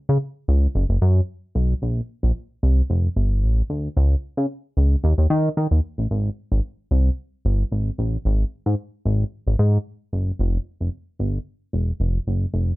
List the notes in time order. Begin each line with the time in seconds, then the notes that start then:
0.09 C#3
0.48 C#2
0.75 F#1
0.89 F#1
1.02 F#2
1.55 B1
1.82 A#1
2.23 A#1
2.63 C2
2.90 F1
3.16 G1
3.43 A1
3.70 D2
3.97 C#2
4.37 C#3
4.77 C#2
5.04 D#2
5.18 D#2
5.30 D#3
5.57 D#3
5.71 D#2
5.98 A1
6.11 G#1
6.52 G#1
6.91 C2
7.45 G1
7.72 G#1
7.98 A1
8.25 G#1
8.66 G#2
9.05 G#1
9.47 G#1
9.59 G#2
10.13 F#1
10.39 F1
10.80 F1
11.19 G1
11.73 E1
12.00 F1
12.27 F#1
12.54 F1